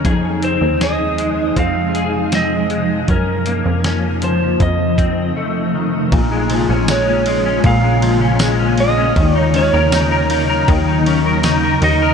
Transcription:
Already playing: clean electric guitar C#4 D#4, ambient pad D#4
0.04 clean electric guitar F2 G#4, analog synth bass F2, ambient pad C3 F3 G#3, kick, closed hi-hat
0.42 clean electric guitar C4, electric slide guitar C5, closed hi-hat
0.61 analog synth bass D#2
0.81 clean electric guitar G#4, electric slide guitar D#5, snare, closed hi-hat
1.18 clean electric guitar G#3, closed hi-hat
1.56 analog synth bass F2, clean electric guitar C4, electric slide guitar F5, kick, closed hi-hat
1.95 clean electric guitar G#4, closed hi-hat
2.32 clean electric guitar C4, electric slide guitar D#5, snare, closed hi-hat
2.70 clean electric guitar G#3, closed hi-hat
3.08 analog synth bass F#2, ambient pad C#3 F3 A#3 F4, clean electric guitar C#4, electric slide guitar A#4, kick, closed hi-hat
3.46 clean electric guitar A#3, closed hi-hat
3.66 analog synth bass F2
3.84 clean electric guitar C#4, snare, closed hi-hat
4.22 clean electric guitar F3, electric slide guitar C5, closed hi-hat
4.60 analog synth bass F2, clean electric guitar F2, ambient pad C3 F3 A3 D#4, electric slide guitar D#5, kick, closed hi-hat
4.98 clean electric guitar C4, kick, closed hi-hat
5.36 clean electric guitar A3
5.74 clean electric guitar D#3
6.12 analog synth bass A#1, clean electric guitar A#2, ambient pad C#3 G#3 A#3 F4, kick, ride
6.31 clean electric guitar G#3
6.50 clean electric guitar F3, ride
6.69 analog synth bass A#1, clean electric guitar C#4
6.88 clean electric guitar G#3, electric slide guitar C#5, snare, ride, tambourine
7.08 clean electric guitar C#4
7.26 clean electric guitar G#3, ride
7.45 clean electric guitar C#4
7.64 analog synth bass A#1, clean electric guitar A#2, electric slide guitar F5, kick, ride
7.83 clean electric guitar G#3
8.02 clean electric guitar F3, ride
8.21 clean electric guitar C#4
8.39 clean electric guitar G#3, snare, ride, tambourine
8.59 clean electric guitar C#4
8.78 clean electric guitar G#3, electric slide guitar D#5, ride
8.97 clean electric guitar C#4
9.16 analog synth bass D#2, clean electric guitar D#3, ambient pad F#3 D#4, kick, ride
9.35 clean electric guitar D#4, electric slide guitar C#5
9.54 clean electric guitar C#4, electric slide guitar C#5, ride
9.73 analog synth bass D#2, clean electric guitar A#4
9.92 clean electric guitar D#4, snare, ride, tambourine
10.11 clean electric guitar A#4
10.30 clean electric guitar D#4, ride
10.49 clean electric guitar A#4
10.68 analog synth bass D#2, clean electric guitar D#3, kick, ride
10.88 clean electric guitar D#4
11.06 clean electric guitar C#4, ride
11.26 clean electric guitar A#4
11.43 clean electric guitar D#4, snare, ride, tambourine
11.63 clean electric guitar A#4
11.82 analog synth bass D#2, clean electric guitar D#4, electric slide guitar D#5, ride
12.02 clean electric guitar A#4

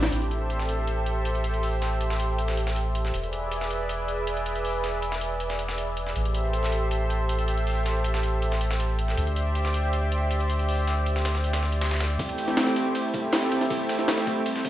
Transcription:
Already playing: sub bass A1
0.03 snare, open hi-hat
0.12 sub bass A1, analog synth pad G4 A4 C5 E5, closed hi-hat
0.22 closed hi-hat
0.31 closed hi-hat
0.50 closed hi-hat
0.59 snare
0.69 closed hi-hat
0.87 closed hi-hat
1.06 closed hi-hat
1.25 closed hi-hat
1.35 closed hi-hat
1.44 closed hi-hat
1.54 closed hi-hat
1.63 open hi-hat
1.82 snare, closed hi-hat
2.01 closed hi-hat
2.10 snare
2.20 closed hi-hat
2.38 closed hi-hat
2.48 snare
2.57 closed hi-hat
2.67 snare
2.76 closed hi-hat
2.95 closed hi-hat
3.05 snare
3.14 sub bass E1, analog synth pad G#4 B4 D5 E5, closed hi-hat
3.24 closed hi-hat
3.33 closed hi-hat
3.52 closed hi-hat
3.61 snare
3.70 closed hi-hat
3.89 closed hi-hat
4.08 closed hi-hat
4.27 closed hi-hat
4.37 closed hi-hat
4.46 closed hi-hat
4.55 closed hi-hat
4.65 open hi-hat
4.84 snare, closed hi-hat
5.02 closed hi-hat
5.12 snare
5.21 closed hi-hat
5.40 closed hi-hat
5.50 snare
5.59 closed hi-hat
5.68 snare
5.78 closed hi-hat
5.97 closed hi-hat
6.06 snare
6.16 sub bass A1, analog synth pad G4 A4 C5 E5, closed hi-hat
6.25 closed hi-hat
6.34 closed hi-hat
6.53 closed hi-hat
6.63 snare
6.72 closed hi-hat
6.91 closed hi-hat
7.10 closed hi-hat
7.29 closed hi-hat
7.39 closed hi-hat
7.48 closed hi-hat
7.57 closed hi-hat
7.67 open hi-hat
7.86 snare, closed hi-hat
8.04 closed hi-hat
8.14 snare
8.23 closed hi-hat
8.42 closed hi-hat
8.52 snare
8.61 closed hi-hat
8.71 snare
8.80 closed hi-hat
8.99 closed hi-hat
9.08 snare
9.17 sub bass D2, analog synth pad G4 C5 D5 E5, closed hi-hat
9.27 closed hi-hat
9.36 closed hi-hat
9.55 closed hi-hat
9.65 snare
9.74 closed hi-hat
9.93 closed hi-hat
10.12 closed hi-hat
10.31 closed hi-hat
10.40 closed hi-hat
10.50 closed hi-hat
10.59 closed hi-hat
10.69 open hi-hat
10.87 snare, closed hi-hat
11.06 closed hi-hat
11.16 snare
11.25 snare, closed hi-hat
11.35 snare
11.44 closed hi-hat
11.53 snare, closed hi-hat
11.63 snare
11.72 closed hi-hat
11.81 snare, closed hi-hat
11.91 snare, closed hi-hat
12.01 snare, closed hi-hat
12.19 sub bass A1, analog synth pad A3 C4 E4 G4, kick, closed hi-hat, ride
12.29 closed hi-hat, ride
12.38 closed hi-hat, ride
12.48 snare
12.57 snare, closed hi-hat, open hi-hat
12.67 snare
12.76 closed hi-hat, ride
12.95 closed hi-hat, ride
13.14 kick, closed hi-hat, ride
13.23 analog synth pad A3 C4 E4 G4
13.33 snare, closed hi-hat, ride
13.42 snare, closed hi-hat
13.52 sub bass A1, closed hi-hat, ride
13.61 snare, closed hi-hat
13.70 sub bass A1, analog synth pad A3 C4 E4 G4, kick, open hi-hat, ride
13.89 snare, closed hi-hat, ride
13.99 snare
14.08 snare, closed hi-hat, ride
14.18 snare
14.27 kick, closed hi-hat, ride
14.46 sub bass C2, closed hi-hat, ride
14.55 snare
14.65 sub bass E1, kick, closed hi-hat, ride

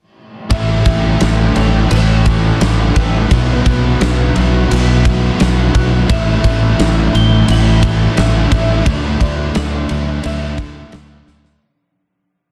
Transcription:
0.50 fingered electric bass A1, overdriven electric guitar A2 E3 A3 C#4 G4, clean electric guitar E5, kick, ride
0.85 fingered electric bass A1, overdriven electric guitar A2 E3 A3, kick, ride
1.20 fingered electric bass A1, overdriven electric guitar A2 E3 A3, snare, ride
1.55 fingered electric bass A1, overdriven electric guitar A2 E3 A3 C#4 G4, clean electric guitar C#5, ride
1.91 fingered electric bass A1, overdriven electric guitar A2 E3 A3 C#4 G4, clean electric guitar C#5, ride
2.26 overdriven electric guitar A2 E3 A3, kick, ride
2.61 fingered electric bass A1, overdriven electric guitar A2 E3 A3 C#4 G4, snare, ride
2.95 fingered electric bass A1, overdriven electric guitar A2 E3 A3 C#4 G4, clean electric guitar B4, kick, ride
3.30 fingered electric bass B1, overdriven electric guitar B2 E3 F#3 B3 E4 F#4, kick, ride
3.65 fingered electric bass B1, overdriven electric guitar B2 F#3 B3, kick, ride
4.01 fingered electric bass B1, overdriven electric guitar B2 F#3 B3, snare, ride
4.35 fingered electric bass B1, overdriven electric guitar B2 F#3 B3 E4 F#4, ride
4.70 fingered electric bass B1, overdriven electric guitar B2 E3 F#3 B3 E4 F#4, ride
5.05 overdriven electric guitar B2 F#3 B3, kick, ride
5.39 fingered electric bass B1, overdriven electric guitar B2 E3 F#3 B3 E4 F#4, snare, ride
5.74 fingered electric bass B1, overdriven electric guitar B2 F#3 B3 E4 F#4, kick, ride
6.09 fingered electric bass A1, overdriven electric guitar A2 E3 G3 A3 C#4 E4, clean electric guitar E5, kick, ride
6.43 fingered electric bass A1, overdriven electric guitar A2 E3 A3, kick, ride
6.79 fingered electric bass A1, overdriven electric guitar A2 E3 A3, snare, ride
7.13 fingered electric bass A1, overdriven electric guitar A2 E3 G3 A3 C#4 E4, clean electric guitar G5, ride
7.47 fingered electric bass A1, overdriven electric guitar A2 E3 G3 A3 C#4 E4, ride
7.52 clean electric guitar G5
7.81 overdriven electric guitar A2 E3 A3, kick, ride
8.17 fingered electric bass A1, overdriven electric guitar A2 E3 G3 A3 C#4 E4, clean electric guitar E5, snare, ride
8.51 fingered electric bass A1, overdriven electric guitar A2 E3 G3 A3 C#4 E4, kick, ride
8.85 fingered electric bass D2, overdriven electric guitar D3 A3 D4 E4, clean electric guitar D5, kick, ride
9.20 fingered electric bass D2, overdriven electric guitar D3 A3 D4, kick, ride
9.37 clean electric guitar C#5
9.54 fingered electric bass D2, overdriven electric guitar D3 A3 D4, clean electric guitar D5, snare, ride
9.89 fingered electric bass D2, overdriven electric guitar D3 A3 D4 E4, ride
10.23 fingered electric bass D2, overdriven electric guitar D3 A3 D4 E4, clean electric guitar E5, ride
10.56 overdriven electric guitar D3 A3 D4, kick, ride
10.92 fingered electric bass D2, overdriven electric guitar D3 A3 D4 E4, snare, ride
11.26 fingered electric bass D2, overdriven electric guitar D3 A3 D4 E4, snare
11.45 snare

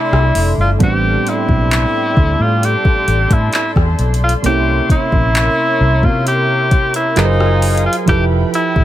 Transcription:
Already playing: synth keys C3 A3 D4 E4, tenor saxophone E4, analog synth pad A4 D5 E5 C6
0.12 fingered electric bass C2, cross-stick
0.35 fingered electric bass F1, open hi-hat
0.58 fingered electric bass G1, tenor saxophone F4
0.79 fingered electric bass A1, synth keys A2 G3 B3 C4, analog synth pad A4 D5 G5 C6, kick, closed hi-hat
0.83 synth keys D4, tenor saxophone G4
1.27 tenor saxophone E4, closed hi-hat
1.49 fingered electric bass B1, kick
1.71 clap, closed hi-hat
2.17 fingered electric bass D2, kick
2.40 fingered electric bass A2, tenor saxophone F4
2.63 tenor saxophone G4, analog synth pad A5, closed hi-hat
2.85 kick
3.08 fingered electric bass A1, closed hi-hat
3.31 fingered electric bass A2, tenor saxophone E4, kick, closed hi-hat
3.53 tenor saxophone E4, clap, closed hi-hat
3.76 fingered electric bass E2, kick, cross-stick
3.99 fingered electric bass B1, closed hi-hat
4.14 closed hi-hat
4.24 tenor saxophone F4
4.29 closed hi-hat
4.42 fingered electric bass C2, synth keys C3 A#3 C#4, tenor saxophone G4, analog synth pad A#4 C#5 E5, closed hi-hat
4.48 synth keys E4
4.90 tenor saxophone E4, kick, closed hi-hat
5.12 fingered electric bass A#1, kick
5.35 clap, closed hi-hat
5.80 fingered electric bass C2
6.03 fingered electric bass C3, tenor saxophone F4, kick
6.27 tenor saxophone G4, closed hi-hat
6.71 kick, closed hi-hat
6.94 tenor saxophone E4, closed hi-hat
7.16 fingered electric bass F#1, synth keys F#3 F4 G#4 A#4 B4, tenor saxophone D#4, analog synth pad F5 G#5, clap, closed hi-hat
7.25 synth keys C5
7.41 cross-stick
7.62 closed hi-hat, open hi-hat
7.77 closed hi-hat
7.86 tenor saxophone F4
7.93 closed hi-hat
8.06 fingered electric bass F1, synth keys F3 E4 G4, tenor saxophone G4, analog synth pad A4 E5 G5 B5, kick, closed hi-hat
8.10 synth keys A4 B4
8.54 tenor saxophone E4, closed hi-hat
8.76 fingered electric bass A1, kick

